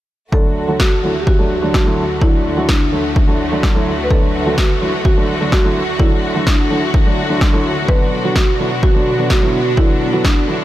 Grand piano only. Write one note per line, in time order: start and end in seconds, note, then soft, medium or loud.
0.32 0.65 D3 medium
0.32 0.65 F#3 medium
0.32 0.65 A3 medium
0.32 0.65 D4 medium
0.67 0.77 D3 medium
0.67 0.77 F#3 medium
0.67 0.77 A3 medium
0.67 0.78 F#4 medium
1.03 1.12 D3 medium
1.03 1.13 F#3 medium
1.03 1.13 A3 medium
1.03 1.13 E4 medium
1.38 1.53 D3 medium
1.38 1.54 F#3 medium
1.38 1.54 A3 medium
1.38 1.54 D4 medium
1.62 1.83 D3 medium
1.62 1.83 F#3 medium
1.62 1.83 A3 medium
1.62 1.83 D4 medium
1.85 2.01 D3 medium
1.85 2.01 F#3 medium
1.85 2.01 A3 medium
1.85 2.01 E4 medium
2.21 2.54 D3 medium
2.21 2.54 F#3 medium
2.21 2.54 A3 medium
2.21 2.54 D4 medium
2.56 2.66 D3 medium
2.56 2.66 F#3 medium
2.56 2.66 A3 medium
2.56 2.67 F#4 medium
2.92 3.01 D3 medium
2.92 3.02 F#3 medium
2.92 3.02 A3 medium
2.92 3.02 E4 medium
3.27 3.42 D3 medium
3.27 3.43 F#3 medium
3.27 3.43 A3 medium
3.27 3.43 D4 medium
3.51 3.72 D3 medium
3.51 3.72 F#3 medium
3.51 3.72 A3 medium
3.51 3.73 D4 medium
3.75 3.90 D3 medium
3.75 3.90 F#3 medium
3.75 3.90 A3 medium
3.75 3.90 E4 medium
4.10 4.43 D3 medium
4.10 4.43 F#3 medium
4.10 4.43 A3 medium
4.10 4.43 D4 medium
4.45 4.55 D3 medium
4.45 4.55 F#3 medium
4.45 4.55 A3 medium
4.45 4.56 F#4 medium
4.81 4.90 D3 medium
4.81 4.91 F#3 medium
4.81 4.91 A3 medium
4.81 4.91 E4 medium
5.16 5.31 D3 medium
5.16 5.32 F#3 medium
5.16 5.32 A3 medium
5.16 5.32 D4 medium
5.40 5.61 D3 medium
5.40 5.61 F#3 medium
5.40 5.61 A3 medium
5.40 5.61 D4 medium
5.63 5.79 D3 medium
5.63 5.79 F#3 medium
5.63 5.79 A3 medium
5.63 5.79 E4 loud
5.99 6.32 D3 medium
5.99 6.32 F#3 medium
5.99 6.32 A3 medium
5.99 6.32 D4 medium
6.34 6.44 D3 medium
6.34 6.44 F#3 medium
6.34 6.44 A3 medium
6.34 6.45 F#4 medium
6.70 6.79 D3 medium
6.70 6.80 F#3 medium
6.70 6.80 A3 medium
6.70 6.80 E4 medium
7.05 7.20 D3 medium
7.05 7.21 F#3 medium
7.05 7.21 A3 medium
7.05 7.21 D4 medium
7.29 7.50 D3 medium
7.29 7.50 F#3 medium
7.29 7.50 A3 medium
7.29 7.51 D4 medium
7.53 7.68 D3 medium
7.53 7.68 F#3 medium
7.53 7.68 A3 medium
7.53 7.68 E4 medium
7.88 8.21 D3 medium
7.88 8.21 F#3 medium
7.88 8.21 B3 medium
7.88 8.21 D4 medium
8.23 8.33 D3 medium
8.23 8.33 F#3 medium
8.23 8.33 B3 medium
8.23 8.34 F#4 medium
8.59 8.68 D3 medium
8.59 8.69 F#3 medium
8.59 8.69 B3 medium
8.59 8.69 E4 medium
8.94 9.09 D3 medium
8.94 9.10 F#3 medium
8.94 9.10 B3 medium
8.94 9.10 D4 medium
9.18 9.39 D3 medium
9.18 9.39 F#3 medium
9.18 9.39 B3 medium
9.18 9.39 D4 medium
9.41 9.57 D3 medium
9.41 9.57 F#3 medium
9.41 9.57 B3 medium
9.41 9.57 E4 medium
9.77 10.10 D3 medium
9.77 10.10 F#3 medium
9.77 10.10 B3 medium
9.77 10.10 D4 medium
10.12 10.22 D3 medium
10.12 10.22 F#3 medium
10.12 10.22 B3 medium
10.12 10.22 F#4 medium
10.48 10.57 D3 medium
10.48 10.58 F#3 medium
10.48 10.58 B3 medium
10.48 10.58 E4 medium